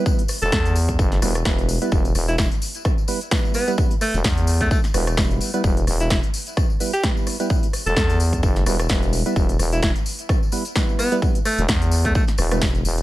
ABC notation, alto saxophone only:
X:1
M:4/4
L:1/16
Q:"Swing 16ths" 1/4=129
K:Em
V:1 name="Alto saxophone"
z3 A3 z8 z2 | z3 E E z8 z B, z | z2 A, z4 A, A, z6 z | z3 E E z6 G z4 |
z3 A3 z8 z2 | z3 E E z8 z B, z | z2 A, z4 A, A, z6 z |]